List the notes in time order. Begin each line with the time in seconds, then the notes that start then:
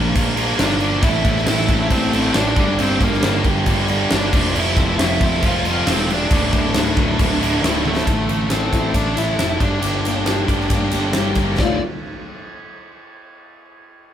Already playing: A#1 A#2 F3 A#3 D4 F4 A#4
0.15 A#1 A#3 D4 F4 A#4, kick, crash
0.37 A#2 F3 A#3 D4 F4 A#4, crash
0.59 G1 A#2 F3 A#3 D4 F4 A#4 D5, snare, crash
0.79 A#3 A#4, crash
0.84 A#3 D4 F4 A#4
1.02 A1 A2 E3 A3 D4 E4 A4 E5, kick, crash
1.25 A1 A3 D4 E4 A4, kick, crash
1.37 snare
1.47 A1 A3 D4 E4 A4 E5, snare, crash
1.69 A1 A2 E3 A3 D4 E4 A4, kick, crash
1.90 A1 A3 C4 D4 E4 A4 C5, kick, crash
2.13 A2 E3 A3 C4 D4 E4 A4 C5, crash
2.34 A1 A2 E3 A3 D4 E4 D5, snare, crash
2.38 A4
2.56 G1 G2 D3 G3 A#3 D4 G4, kick, crash
2.79 G1 G2 D3 G3 A#3 C4 D4 G4 C5, crash
3.00 G1 G3 A#3 D4 G4 A#4, kick, crash
3.12 snare
3.23 G1 G3 A#3 D4 G4, snare, crash
3.44 G1 G2 D3 G3 A#3 D4 G4, kick, crash
3.66 G1 G2 D3 G3 A#3 D4 G4, kick, crash
3.88 D3 G3 A#3 D4 G4, crash
3.92 G2
4.11 G1 G2 D3 G3 A#3 D4 G4 D5, snare, crash
4.33 F1 F2 C3 F3 A3 C4 F4, kick, crash
4.54 F1 F2 C3 F3 A3 C4 E4 F4, crash
4.60 E5
4.76 F1 F3 A3 C4 F4, kick, crash
4.99 F1 F3 A3 C4 E4 F4, snare, crash
5.05 E5
5.20 F1 A3 C4 E4 F4, kick, crash
5.25 F2 C3 F3 E5
5.43 F1 F2 C3 F3 A3 C4 F4, kick, crash
5.47 F5
5.65 C3 F3 A3 C4 F4, crash
5.69 F2
5.87 E1 F2 C3 F3 A3 C4 F4, snare, crash
5.94 C5
6.10 F3 A3 C4 D4 F4, crash
6.14 D5
6.30 D1 D2 A2 D3 A3 E4, kick, crash
6.52 D1 A3 E4, kick, crash
6.57 D3
6.74 D1 A2 D3 A3 E4, snare, crash
6.96 D1 D2 A2 D3 A3 E4, kick, crash
7.19 D1 A2 D3 A3 E4, kick, crash
7.40 D2 A2 D3 A3 E4, crash
7.45 D3
7.63 D1 D2 A2 D3 A3 E4, snare, crash
7.85 D3 A3 E4 A4, high tom
7.97 snare
8.04 A1 A2 D4 E4, kick, ride
8.08 A2 E3 A3 D4 E4 A4
8.29 A1 A3 D4 E4 A4, ride
8.50 A1 A2 E3 A3 C4 D4 E4 A4 C5, snare, ride
8.73 A1 A3 D4 E4 A4, kick, ride
8.93 A1 A3 D4 E4 D5, kick, ride
8.98 A4
9.17 A2 E3 A3 D4 E4 A4 E5, ride
9.36 F1 A2 E3 A3 D4 E4 A4, snare, ride
9.41 A3 D4 E4 A4
9.57 G1 G2 G3 A#3 D4 G4 D5, kick, ride
9.62 G2 D3 G3 A#3 D4
9.82 G1 G2 D3 G3 A#3 D4 G4, ride
10.03 G3 G4, ride
10.07 G3 A#3 D4 G4
10.25 G1 G2 D3 G3 A#3, snare, ride
10.29 G3 A#3 D4 G4
10.47 G1 G4, kick, ride
10.51 G3 A#3 D4 G4
10.60 snare
10.70 G1 G3 A#3, kick, ride
10.75 D4 G4
10.92 G1 D4 G4, ride
10.96 G2 D3 G3 A#3
11.13 G1 G2 D3 G3 A#3 D4, snare, ride
11.18 G4
11.35 G1 A#3 D4 G4, kick, ride
11.40 G3
11.58 D1 D2 D5, kick, snare
11.62 A2 D3 A3 F4